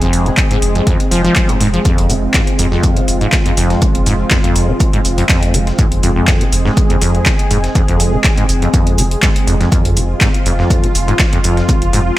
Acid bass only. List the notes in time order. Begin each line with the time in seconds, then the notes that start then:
0.01 F2
0.26 F3
0.51 G#2
0.75 F2
0.87 F2
1.11 F3
1.24 F3
1.36 F3
1.49 F2
1.60 G#2
1.73 F3
1.85 F2
2.10 F3
2.34 G#2
2.59 F2
2.72 F2
2.97 F3
3.21 G#2
3.46 F2
3.57 F2
3.82 F3
4.06 G#2
4.31 F2
4.44 F2
4.69 F3
4.93 G#2
5.18 F2
5.29 F2
5.54 F3
5.79 G#2
6.03 F2
6.16 F2
6.41 F3
6.65 G#2
6.90 F2
7.01 F2
7.26 F3
7.51 G#2
7.75 F2
7.88 F2
8.13 F3
8.38 G#2
8.62 F2
8.74 F2
8.98 F3
9.23 G#2
9.47 F2
9.60 F2
9.72 F2
9.97 F3
10.21 G#2
10.46 F2
10.59 F2
10.83 F3
11.08 G#2
11.33 F2
11.44 F2
11.69 F3
11.93 G#2